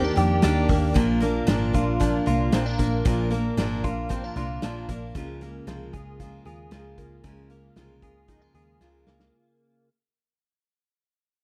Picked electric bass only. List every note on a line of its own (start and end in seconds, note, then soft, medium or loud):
0.17 0.40 F2 loud
0.44 0.66 D#2 loud
0.69 0.92 D#2 medium
0.96 1.40 A#1 loud
1.48 1.70 G#1 loud
1.74 2.19 A#1 medium
2.27 2.49 C2 medium
2.53 2.75 A#1 loud
2.79 3.01 A#1 medium
3.06 3.50 A#1 loud
3.58 3.80 G#1 medium
3.84 4.29 A#1 medium
4.36 4.58 C2 loud
4.63 4.85 A#1 loud
4.89 5.11 A#1 loud
5.15 5.59 C#2 loud
5.67 5.89 C2 medium
5.94 6.38 C#2 medium
6.46 6.68 D#2 loud
6.72 6.94 C#2 loud
6.98 7.20 C#2 medium
7.24 7.68 C#2 loud
7.77 7.99 C2 medium
8.02 8.47 C#2 medium
8.54 8.77 D#2 medium
8.81 9.03 C#2 loud
9.07 9.29 C#2 medium